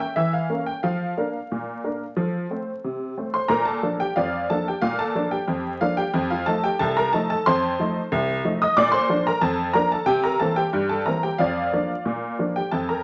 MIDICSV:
0, 0, Header, 1, 2, 480
1, 0, Start_track
1, 0, Key_signature, -2, "major"
1, 0, Tempo, 665927
1, 607, Time_signature, 2, 2, 24, 8
1, 3007, Tempo, 657895
1, 9473, End_track
2, 0, Start_track
2, 0, Title_t, "Honky-tonk piano"
2, 0, Program_c, 0, 3
2, 0, Note_on_c, 0, 79, 85
2, 115, Note_on_c, 0, 76, 94
2, 120, Note_on_c, 0, 52, 77
2, 123, Note_off_c, 0, 79, 0
2, 239, Note_on_c, 0, 77, 81
2, 240, Note_off_c, 0, 76, 0
2, 326, Note_off_c, 0, 52, 0
2, 358, Note_on_c, 0, 58, 51
2, 359, Note_on_c, 0, 61, 44
2, 363, Note_on_c, 0, 70, 49
2, 434, Note_off_c, 0, 77, 0
2, 479, Note_on_c, 0, 79, 78
2, 493, Note_off_c, 0, 58, 0
2, 493, Note_off_c, 0, 61, 0
2, 496, Note_off_c, 0, 70, 0
2, 598, Note_on_c, 0, 77, 84
2, 602, Note_on_c, 0, 53, 85
2, 603, Note_off_c, 0, 79, 0
2, 809, Note_off_c, 0, 53, 0
2, 846, Note_on_c, 0, 58, 51
2, 848, Note_on_c, 0, 62, 50
2, 854, Note_on_c, 0, 70, 50
2, 979, Note_off_c, 0, 58, 0
2, 981, Note_off_c, 0, 62, 0
2, 984, Note_off_c, 0, 70, 0
2, 1093, Note_on_c, 0, 46, 73
2, 1295, Note_off_c, 0, 46, 0
2, 1328, Note_on_c, 0, 58, 46
2, 1330, Note_on_c, 0, 62, 48
2, 1334, Note_on_c, 0, 70, 48
2, 1460, Note_off_c, 0, 58, 0
2, 1462, Note_off_c, 0, 62, 0
2, 1465, Note_off_c, 0, 70, 0
2, 1560, Note_on_c, 0, 53, 81
2, 1575, Note_on_c, 0, 69, 48
2, 1705, Note_off_c, 0, 69, 0
2, 1768, Note_off_c, 0, 53, 0
2, 1803, Note_on_c, 0, 57, 43
2, 1807, Note_on_c, 0, 60, 50
2, 1809, Note_on_c, 0, 72, 51
2, 1937, Note_off_c, 0, 57, 0
2, 1940, Note_off_c, 0, 60, 0
2, 1941, Note_off_c, 0, 72, 0
2, 1948, Note_off_c, 0, 77, 0
2, 2048, Note_on_c, 0, 48, 74
2, 2253, Note_off_c, 0, 48, 0
2, 2288, Note_on_c, 0, 57, 47
2, 2289, Note_on_c, 0, 60, 47
2, 2292, Note_on_c, 0, 72, 46
2, 2403, Note_off_c, 0, 72, 0
2, 2406, Note_on_c, 0, 84, 85
2, 2414, Note_on_c, 0, 72, 63
2, 2421, Note_off_c, 0, 57, 0
2, 2421, Note_off_c, 0, 60, 0
2, 2512, Note_on_c, 0, 82, 101
2, 2517, Note_on_c, 0, 46, 100
2, 2523, Note_off_c, 0, 72, 0
2, 2525, Note_on_c, 0, 70, 86
2, 2527, Note_off_c, 0, 84, 0
2, 2634, Note_on_c, 0, 81, 95
2, 2638, Note_off_c, 0, 70, 0
2, 2640, Note_off_c, 0, 82, 0
2, 2644, Note_on_c, 0, 69, 70
2, 2725, Note_off_c, 0, 46, 0
2, 2758, Note_on_c, 0, 53, 54
2, 2760, Note_on_c, 0, 58, 57
2, 2763, Note_on_c, 0, 62, 59
2, 2830, Note_off_c, 0, 81, 0
2, 2868, Note_off_c, 0, 69, 0
2, 2883, Note_on_c, 0, 79, 92
2, 2892, Note_off_c, 0, 53, 0
2, 2893, Note_off_c, 0, 58, 0
2, 2894, Note_on_c, 0, 67, 69
2, 2895, Note_off_c, 0, 62, 0
2, 2997, Note_on_c, 0, 77, 96
2, 3000, Note_on_c, 0, 41, 84
2, 3001, Note_off_c, 0, 67, 0
2, 3004, Note_off_c, 0, 79, 0
2, 3004, Note_on_c, 0, 65, 71
2, 3004, Note_on_c, 0, 74, 72
2, 3207, Note_off_c, 0, 41, 0
2, 3228, Note_off_c, 0, 65, 0
2, 3229, Note_off_c, 0, 74, 0
2, 3229, Note_off_c, 0, 77, 0
2, 3245, Note_on_c, 0, 81, 96
2, 3246, Note_on_c, 0, 53, 54
2, 3250, Note_on_c, 0, 58, 57
2, 3253, Note_on_c, 0, 69, 75
2, 3255, Note_on_c, 0, 62, 59
2, 3362, Note_off_c, 0, 69, 0
2, 3366, Note_off_c, 0, 81, 0
2, 3378, Note_off_c, 0, 53, 0
2, 3378, Note_on_c, 0, 79, 75
2, 3381, Note_off_c, 0, 58, 0
2, 3385, Note_off_c, 0, 62, 0
2, 3386, Note_on_c, 0, 67, 59
2, 3476, Note_on_c, 0, 77, 107
2, 3479, Note_on_c, 0, 46, 95
2, 3487, Note_on_c, 0, 65, 75
2, 3489, Note_off_c, 0, 67, 0
2, 3492, Note_off_c, 0, 79, 0
2, 3599, Note_off_c, 0, 65, 0
2, 3602, Note_off_c, 0, 77, 0
2, 3602, Note_on_c, 0, 81, 106
2, 3611, Note_on_c, 0, 69, 77
2, 3687, Note_off_c, 0, 46, 0
2, 3721, Note_on_c, 0, 53, 53
2, 3725, Note_on_c, 0, 58, 62
2, 3727, Note_on_c, 0, 62, 63
2, 3832, Note_off_c, 0, 69, 0
2, 3832, Note_off_c, 0, 81, 0
2, 3840, Note_on_c, 0, 79, 85
2, 3847, Note_on_c, 0, 67, 66
2, 3854, Note_off_c, 0, 53, 0
2, 3858, Note_off_c, 0, 58, 0
2, 3859, Note_off_c, 0, 62, 0
2, 3959, Note_on_c, 0, 41, 90
2, 4166, Note_off_c, 0, 41, 0
2, 4181, Note_off_c, 0, 67, 0
2, 4185, Note_off_c, 0, 79, 0
2, 4201, Note_on_c, 0, 77, 95
2, 4203, Note_on_c, 0, 53, 62
2, 4207, Note_on_c, 0, 58, 58
2, 4209, Note_on_c, 0, 65, 70
2, 4210, Note_on_c, 0, 62, 65
2, 4319, Note_off_c, 0, 65, 0
2, 4319, Note_on_c, 0, 79, 99
2, 4323, Note_off_c, 0, 77, 0
2, 4329, Note_on_c, 0, 67, 77
2, 4336, Note_off_c, 0, 53, 0
2, 4338, Note_off_c, 0, 58, 0
2, 4341, Note_off_c, 0, 62, 0
2, 4440, Note_on_c, 0, 41, 110
2, 4550, Note_off_c, 0, 79, 0
2, 4551, Note_off_c, 0, 67, 0
2, 4563, Note_on_c, 0, 77, 92
2, 4570, Note_on_c, 0, 65, 73
2, 4646, Note_off_c, 0, 41, 0
2, 4677, Note_on_c, 0, 81, 110
2, 4679, Note_off_c, 0, 65, 0
2, 4683, Note_on_c, 0, 53, 60
2, 4684, Note_off_c, 0, 77, 0
2, 4686, Note_on_c, 0, 57, 64
2, 4686, Note_on_c, 0, 69, 85
2, 4689, Note_on_c, 0, 63, 65
2, 4797, Note_off_c, 0, 69, 0
2, 4801, Note_off_c, 0, 81, 0
2, 4805, Note_on_c, 0, 79, 98
2, 4814, Note_on_c, 0, 67, 76
2, 4815, Note_off_c, 0, 53, 0
2, 4818, Note_off_c, 0, 57, 0
2, 4819, Note_off_c, 0, 63, 0
2, 4920, Note_on_c, 0, 81, 118
2, 4921, Note_off_c, 0, 67, 0
2, 4925, Note_off_c, 0, 79, 0
2, 4927, Note_on_c, 0, 36, 99
2, 4930, Note_on_c, 0, 69, 94
2, 5039, Note_off_c, 0, 69, 0
2, 5042, Note_off_c, 0, 81, 0
2, 5047, Note_on_c, 0, 82, 105
2, 5057, Note_on_c, 0, 70, 83
2, 5129, Note_off_c, 0, 36, 0
2, 5162, Note_off_c, 0, 70, 0
2, 5164, Note_on_c, 0, 81, 110
2, 5165, Note_off_c, 0, 82, 0
2, 5170, Note_on_c, 0, 53, 61
2, 5170, Note_on_c, 0, 69, 79
2, 5173, Note_on_c, 0, 57, 66
2, 5173, Note_on_c, 0, 63, 76
2, 5278, Note_off_c, 0, 69, 0
2, 5279, Note_off_c, 0, 81, 0
2, 5290, Note_on_c, 0, 81, 114
2, 5299, Note_off_c, 0, 53, 0
2, 5299, Note_on_c, 0, 69, 84
2, 5301, Note_off_c, 0, 57, 0
2, 5302, Note_off_c, 0, 63, 0
2, 5403, Note_off_c, 0, 69, 0
2, 5403, Note_off_c, 0, 81, 0
2, 5407, Note_on_c, 0, 84, 120
2, 5412, Note_on_c, 0, 41, 118
2, 5414, Note_on_c, 0, 72, 93
2, 5414, Note_on_c, 0, 81, 89
2, 5611, Note_off_c, 0, 41, 0
2, 5650, Note_on_c, 0, 53, 70
2, 5657, Note_on_c, 0, 57, 72
2, 5658, Note_on_c, 0, 63, 73
2, 5779, Note_off_c, 0, 53, 0
2, 5784, Note_off_c, 0, 57, 0
2, 5785, Note_off_c, 0, 63, 0
2, 5883, Note_off_c, 0, 84, 0
2, 5887, Note_on_c, 0, 36, 107
2, 5976, Note_off_c, 0, 72, 0
2, 5976, Note_off_c, 0, 81, 0
2, 6087, Note_off_c, 0, 36, 0
2, 6125, Note_on_c, 0, 53, 65
2, 6126, Note_on_c, 0, 57, 65
2, 6131, Note_on_c, 0, 63, 74
2, 6250, Note_on_c, 0, 87, 118
2, 6255, Note_off_c, 0, 53, 0
2, 6256, Note_off_c, 0, 57, 0
2, 6259, Note_off_c, 0, 63, 0
2, 6260, Note_on_c, 0, 75, 91
2, 6360, Note_on_c, 0, 86, 127
2, 6361, Note_off_c, 0, 75, 0
2, 6364, Note_off_c, 0, 87, 0
2, 6365, Note_on_c, 0, 46, 120
2, 6369, Note_on_c, 0, 74, 106
2, 6470, Note_on_c, 0, 84, 122
2, 6475, Note_off_c, 0, 74, 0
2, 6478, Note_off_c, 0, 86, 0
2, 6481, Note_on_c, 0, 72, 97
2, 6565, Note_off_c, 0, 46, 0
2, 6597, Note_on_c, 0, 53, 73
2, 6602, Note_on_c, 0, 58, 69
2, 6604, Note_on_c, 0, 62, 86
2, 6700, Note_off_c, 0, 84, 0
2, 6701, Note_off_c, 0, 72, 0
2, 6725, Note_on_c, 0, 82, 113
2, 6728, Note_off_c, 0, 53, 0
2, 6731, Note_off_c, 0, 58, 0
2, 6733, Note_off_c, 0, 62, 0
2, 6734, Note_on_c, 0, 70, 85
2, 6832, Note_on_c, 0, 81, 127
2, 6833, Note_on_c, 0, 41, 111
2, 6837, Note_off_c, 0, 70, 0
2, 6838, Note_on_c, 0, 69, 88
2, 6840, Note_off_c, 0, 82, 0
2, 7036, Note_off_c, 0, 41, 0
2, 7059, Note_off_c, 0, 69, 0
2, 7060, Note_off_c, 0, 81, 0
2, 7065, Note_on_c, 0, 82, 110
2, 7072, Note_on_c, 0, 53, 66
2, 7075, Note_on_c, 0, 70, 87
2, 7077, Note_on_c, 0, 58, 65
2, 7077, Note_on_c, 0, 62, 73
2, 7186, Note_off_c, 0, 70, 0
2, 7189, Note_off_c, 0, 82, 0
2, 7199, Note_on_c, 0, 81, 101
2, 7204, Note_off_c, 0, 53, 0
2, 7207, Note_off_c, 0, 62, 0
2, 7208, Note_off_c, 0, 58, 0
2, 7208, Note_on_c, 0, 69, 79
2, 7303, Note_on_c, 0, 48, 110
2, 7303, Note_on_c, 0, 79, 118
2, 7311, Note_on_c, 0, 67, 89
2, 7313, Note_off_c, 0, 69, 0
2, 7316, Note_off_c, 0, 81, 0
2, 7424, Note_off_c, 0, 67, 0
2, 7428, Note_off_c, 0, 79, 0
2, 7431, Note_on_c, 0, 82, 108
2, 7441, Note_on_c, 0, 70, 78
2, 7511, Note_off_c, 0, 48, 0
2, 7548, Note_on_c, 0, 81, 109
2, 7549, Note_off_c, 0, 70, 0
2, 7552, Note_off_c, 0, 82, 0
2, 7554, Note_on_c, 0, 52, 63
2, 7557, Note_on_c, 0, 60, 75
2, 7558, Note_on_c, 0, 69, 83
2, 7559, Note_on_c, 0, 58, 65
2, 7668, Note_off_c, 0, 69, 0
2, 7670, Note_on_c, 0, 79, 98
2, 7671, Note_off_c, 0, 81, 0
2, 7676, Note_on_c, 0, 67, 80
2, 7686, Note_off_c, 0, 52, 0
2, 7689, Note_off_c, 0, 60, 0
2, 7690, Note_off_c, 0, 58, 0
2, 7793, Note_on_c, 0, 43, 99
2, 7864, Note_off_c, 0, 79, 0
2, 7899, Note_off_c, 0, 67, 0
2, 7911, Note_on_c, 0, 81, 92
2, 7919, Note_on_c, 0, 69, 74
2, 7999, Note_off_c, 0, 43, 0
2, 8030, Note_off_c, 0, 69, 0
2, 8031, Note_on_c, 0, 82, 94
2, 8034, Note_off_c, 0, 81, 0
2, 8034, Note_on_c, 0, 52, 53
2, 8038, Note_on_c, 0, 58, 50
2, 8038, Note_on_c, 0, 60, 65
2, 8038, Note_on_c, 0, 70, 69
2, 8150, Note_off_c, 0, 70, 0
2, 8155, Note_off_c, 0, 82, 0
2, 8158, Note_on_c, 0, 79, 89
2, 8164, Note_on_c, 0, 67, 65
2, 8168, Note_off_c, 0, 52, 0
2, 8171, Note_off_c, 0, 58, 0
2, 8171, Note_off_c, 0, 60, 0
2, 8269, Note_on_c, 0, 77, 100
2, 8273, Note_off_c, 0, 67, 0
2, 8273, Note_on_c, 0, 41, 99
2, 8279, Note_off_c, 0, 79, 0
2, 8280, Note_on_c, 0, 65, 69
2, 8282, Note_on_c, 0, 74, 74
2, 8481, Note_off_c, 0, 41, 0
2, 8521, Note_on_c, 0, 53, 54
2, 8521, Note_on_c, 0, 58, 57
2, 8526, Note_on_c, 0, 62, 65
2, 8654, Note_off_c, 0, 53, 0
2, 8654, Note_off_c, 0, 58, 0
2, 8658, Note_off_c, 0, 62, 0
2, 8758, Note_on_c, 0, 46, 84
2, 8966, Note_off_c, 0, 46, 0
2, 9003, Note_on_c, 0, 53, 56
2, 9006, Note_on_c, 0, 58, 53
2, 9008, Note_on_c, 0, 62, 55
2, 9092, Note_off_c, 0, 77, 0
2, 9097, Note_off_c, 0, 65, 0
2, 9098, Note_off_c, 0, 74, 0
2, 9127, Note_on_c, 0, 79, 82
2, 9136, Note_off_c, 0, 53, 0
2, 9136, Note_on_c, 0, 67, 58
2, 9139, Note_off_c, 0, 58, 0
2, 9140, Note_off_c, 0, 62, 0
2, 9240, Note_on_c, 0, 81, 97
2, 9244, Note_off_c, 0, 67, 0
2, 9244, Note_on_c, 0, 41, 92
2, 9247, Note_off_c, 0, 79, 0
2, 9248, Note_on_c, 0, 69, 75
2, 9360, Note_off_c, 0, 69, 0
2, 9364, Note_off_c, 0, 81, 0
2, 9367, Note_on_c, 0, 82, 81
2, 9375, Note_on_c, 0, 70, 65
2, 9451, Note_off_c, 0, 41, 0
2, 9473, Note_off_c, 0, 70, 0
2, 9473, Note_off_c, 0, 82, 0
2, 9473, End_track
0, 0, End_of_file